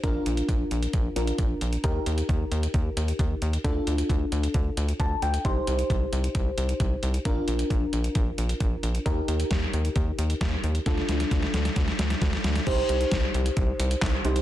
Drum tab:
CC |----------------|----------------|----------------|----------------|
HH |x-xxx-xxx-xxx-xx|x-xxx-xxx-xxx-xx|x-xxx-xxx-xxx-xx|x-xxx-xxx-xxx-xx|
CP |----------------|----------------|----------------|----------------|
SD |----------------|----------------|----------------|----------------|
BD |o---o---o---o---|o---o---o---o---|o---o---o---o---|o---o---o---o---|

CC |----------------|----------------|----------------|x---------------|
HH |x-xxx-xxx-xxx-xx|x-xxx-xxx-xxx-xx|x-xxx-xxx-xxx-xx|x-xxx-xxx-xxx-xx|
CP |----------------|----------------|----------------|------------x---|
SD |----------------|----o-------o---|oooooooooooooooo|----o-------o---|
BD |o---o---o---o---|o---o---o---o---|o---o---o---o---|o---o---o---o---|